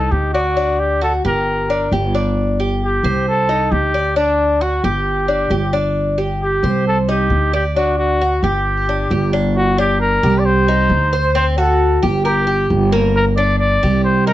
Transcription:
Already playing: cuban tres D#4, trumpet A4
0.11 upright bass D2, trumpet G4
0.33 trumpet F#4, cuban tres D5
0.57 cuban tres D4
0.80 trumpet G4
1.01 cuban tres F#4, trumpet A4
1.24 upright bass G1, cuban tres G4, trumpet A#4
1.70 cuban tres D4
1.91 upright bass G1, cuban tres G4
2.15 cuban tres D4
2.60 cuban tres G4
2.84 trumpet G4
3.03 upright bass C2, cuban tres C5
3.28 trumpet A4
3.49 cuban tres D#4
3.71 upright bass D2, trumpet G4
3.94 cuban tres D5
4.16 cuban tres D4, trumpet D4
4.61 cuban tres F#4, trumpet F#4
4.83 upright bass G1, cuban tres G4, trumpet G4
5.28 cuban tres D4
5.50 upright bass G1, cuban tres G4
5.73 cuban tres D4
6.18 cuban tres G4
6.43 trumpet G4
6.63 upright bass C2, cuban tres C5
6.88 trumpet A4
7.09 cuban tres D#4, trumpet G4
7.30 upright bass D2
7.53 trumpet G4, cuban tres D5
7.76 cuban tres D4, trumpet F#4
7.98 trumpet F#4
8.21 cuban tres F#4
8.42 upright bass G1, trumpet G4, cuban tres G4
8.89 cuban tres D4
9.10 upright bass G1, cuban tres G4
9.33 cuban tres D4
9.57 trumpet F#4
9.78 cuban tres D4, trumpet G4
10.00 trumpet A#4
10.23 upright bass C2, cuban tres G4
10.39 trumpet D5
10.45 trumpet C5
10.68 cuban tres D#4
10.89 upright bass D2
11.13 cuban tres C5
11.35 cuban tres C4, trumpet C5
11.58 cuban tres F#4, trumpet A4
12.03 upright bass G1, cuban tres G4
12.25 trumpet G4, cuban tres A#4
12.47 cuban tres G4
12.70 upright bass G1
12.92 cuban tres A#3
13.16 trumpet A#4
13.36 cuban tres D4, trumpet D5
13.59 trumpet D5
13.83 upright bass C2, cuban tres G4
14.04 trumpet C5
14.26 cuban tres D#4, trumpet A#4

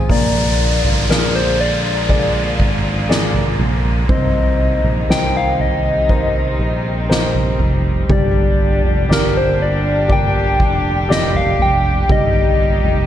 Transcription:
Already playing: grand piano C4 G#4 C5
0.09 fingered electric bass A#1, string section D3 F3 G#3 A#3 F4, grand piano A#3, soft synth lead D5, kick, floor tom, crash, downlifter
0.85 fingered electric bass G#1, floor tom
1.09 fingered electric bass A#1, grand piano G#4 A#4 D5, soft synth lead A#4, snare
1.35 soft synth lead C5
1.61 soft synth lead D5
2.09 grand piano G#4 A#4 D5, kick, floor tom
2.60 fingered electric bass G#1, kick
3.09 grand piano G#4 A#4 D5, snare
3.34 floor tom
3.59 fingered electric bass A#1, floor tom
4.09 fingered electric bass C2, string section C3 D#3 G3 D#4, grand piano C4, soft synth lead D#5, kick, floor tom
4.84 fingered electric bass A#1, floor tom
5.09 fingered electric bass C2, grand piano A#4 C5 D#5, soft synth lead G5, snare
5.37 soft synth lead F5
5.59 soft synth lead D#5, floor tom
6.09 string section C4, grand piano A#4 C5 D#5, kick, floor tom
6.59 fingered electric bass A#1
7.09 grand piano A#4 C5 D#5, snare
7.34 floor tom
7.60 fingered electric bass F1, floor tom
8.10 fingered electric bass G1, string section A#2 D3 D4 G4, grand piano G3, soft synth lead D5, kick, floor tom
8.85 fingered electric bass F1, floor tom
9.09 fingered electric bass G1, grand piano G4 A#4 D5, soft synth lead A#4, snare
9.37 soft synth lead C5
9.62 soft synth lead D5
10.08 grand piano G4 A#4 D5, kick, floor tom
10.12 soft synth lead G5
10.60 fingered electric bass F1, kick
11.09 grand piano G4 A#4 D5, soft synth lead D#5, snare
11.34 soft synth lead F5, floor tom
11.59 fingered electric bass F1, soft synth lead G5, floor tom
12.09 fingered electric bass G1, string section A#2 D#3 D#4, grand piano G3, soft synth lead D#5, kick, floor tom
12.84 fingered electric bass F1, floor tom

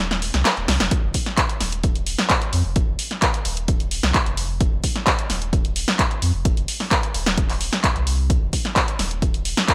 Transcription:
Already playing: sub bass D#1
0.11 snare, closed hi-hat
0.22 open hi-hat
0.34 sub bass C2, snare, closed hi-hat
0.45 snare, clap, closed hi-hat
0.57 sub bass D#1, closed hi-hat
0.68 sub bass C2, snare, open hi-hat
0.80 sub bass F1, snare, closed hi-hat
0.91 kick, closed hi-hat
1.03 sub bass F1
1.14 kick, open hi-hat
1.26 snare, closed hi-hat
1.37 kick, clap, closed hi-hat
1.49 closed hi-hat
1.61 sub bass D#1, snare, open hi-hat
1.72 closed hi-hat
1.83 kick, closed hi-hat
1.95 closed hi-hat
2.07 open hi-hat
2.19 snare, closed hi-hat
2.30 kick, clap, closed hi-hat
2.42 closed hi-hat
2.53 sub bass F2, open hi-hat
2.65 sub bass F1
2.76 kick, closed hi-hat
2.88 sub bass F1
2.99 open hi-hat
3.11 snare, closed hi-hat
3.22 kick, clap, closed hi-hat
3.34 closed hi-hat
3.45 sub bass D#1, open hi-hat
3.57 closed hi-hat
3.68 kick, closed hi-hat
3.80 closed hi-hat
3.91 open hi-hat
4.03 sub bass C2, snare, closed hi-hat
4.14 kick, clap, closed hi-hat
4.26 sub bass F1, closed hi-hat
4.37 open hi-hat
4.61 kick, closed hi-hat
4.73 sub bass F1
4.84 kick, open hi-hat
4.96 snare, closed hi-hat
5.07 kick, clap, closed hi-hat
5.19 closed hi-hat
5.30 sub bass D#1, snare, open hi-hat
5.42 closed hi-hat
5.53 kick, closed hi-hat
5.65 closed hi-hat
5.76 open hi-hat
5.88 snare, closed hi-hat
5.99 kick, clap, closed hi-hat
6.11 closed hi-hat
6.22 sub bass F2, open hi-hat
6.34 sub bass F1
6.45 kick, closed hi-hat
6.57 sub bass F1, closed hi-hat
6.68 open hi-hat
6.80 snare, open hi-hat
6.91 kick, clap, closed hi-hat
7.03 closed hi-hat
7.14 sub bass D#1, open hi-hat
7.26 snare, closed hi-hat
7.38 kick, closed hi-hat
7.50 clap, open hi-hat
7.61 open hi-hat
7.73 snare, closed hi-hat
7.84 kick, clap, closed hi-hat
7.96 sub bass C2, closed hi-hat
8.07 open hi-hat
8.30 kick, closed hi-hat
8.42 sub bass F1
8.53 kick, open hi-hat
8.65 snare, closed hi-hat
8.76 kick, clap, closed hi-hat
8.88 closed hi-hat
8.99 sub bass D#1, snare, open hi-hat
9.11 closed hi-hat
9.22 kick, closed hi-hat
9.34 closed hi-hat
9.45 open hi-hat
9.57 snare, closed hi-hat
9.68 kick, clap, closed hi-hat

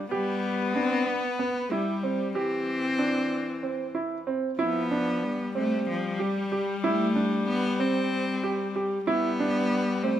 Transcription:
Already playing: viola G3
0.10 cello G3, viola B3, grand piano G4
0.75 cello C4, grand piano D4
1.07 cello B3
1.39 grand piano B3
1.70 viola G3, cello G3, grand piano E4
2.03 grand piano C4
2.35 viola E3, cello C4, grand piano G4
2.99 grand piano D4
3.63 grand piano C4
3.95 grand piano E4
4.27 grand piano C4
4.59 viola F3, cello B3, grand piano E4
4.91 grand piano D4
5.23 viola G3
5.55 cello A3, grand piano C4
5.89 cello F3
6.19 cello G3, grand piano G4
6.52 grand piano G4
6.84 cello A3, grand piano E4
7.16 grand piano D4
7.48 cello B3
7.79 grand piano C4, cello C4
8.43 grand piano G4
8.76 grand piano G4
9.06 viola G3, cello B3, grand piano E4
9.40 grand piano D4
10.03 cello A3, grand piano C4

